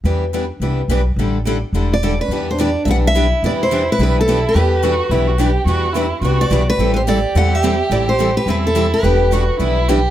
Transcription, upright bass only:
X:1
M:4/4
L:1/8
Q:"Swing" 1/4=214
K:Em
V:1 name="Upright bass" clef=bass
E,,4 C,,2 B,,,2 | A,,,4 E,,,4 | E,,4 B,,,4 | E,,4 B,,,4 |
E,,4 B,,,4 | E,,4 C,,2 B,,,2 | A,,,4 E,,4 | A,,,4 E,,4 |
E,,,4 B,,,4 |]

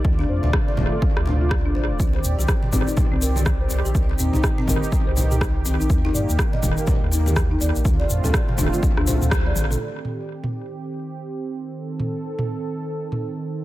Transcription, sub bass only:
X:1
M:4/4
L:1/16
Q:"Swing 16ths" 1/4=123
K:Cdor
V:1 name="Sub bass" clef=bass
D,,2 F,, D,, z2 D,,, z2 D,,4 C,, A,,, D,,, | C,,2 E,, C,, z2 G,,, z2 C,,4- C,, C,, B,,, | C,,2 E,, C,, z2 G,,, z2 C,,4- C,, C,, B,,, | E,,2 G,, E,, z2 E,,, z2 E,,4- E,, E,, B,,, |
D,,2 F,, D,, z2 D,,, z2 D,, C,, D,,3 A,,,2 | z16 | z16 |]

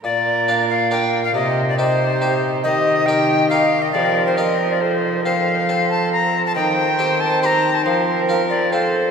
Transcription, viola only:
X:1
M:3/4
L:1/8
Q:1/4=138
K:Bb
V:1 name="Viola"
B6 | G2 G4 | G2 G4 | B4 A z |
A6 | c6 | B4 A2 |]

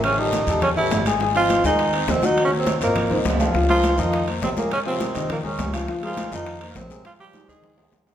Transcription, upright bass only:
X:1
M:4/4
L:1/8
Q:1/4=206
K:Ab
V:1 name="Upright bass" clef=bass
=A,,,3 =E,,2 A,,, _A,,,2- | A,,,3 E,,3 E,,2- | E,,3 A,,,2 C,, D,,2 | D,,3 F,,3 B,,,2 |
z3 E,,2 E,, D,,2 | z3 F,,3 B,,,2 | z3 E,,2 D,, E,,2 |]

